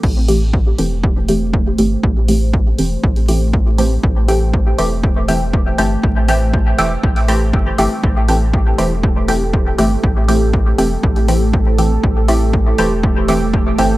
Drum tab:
CC |x---------------|----------------|----------------|----------------|
HH |--o---o---o---o-|--o---o--oo---o-|--o---o---o---o-|--o---o--oo---o-|
BD |o---o---o---o---|o---o---o---o---|o---o---o---o---|o---o---o---o---|

CC |----------------|----------------|----------------|
HH |--o---o---o---o-|--o---o--oo---o-|--o---o---o---o-|
BD |o---o---o---o---|o---o---o---o---|o---o---o---o---|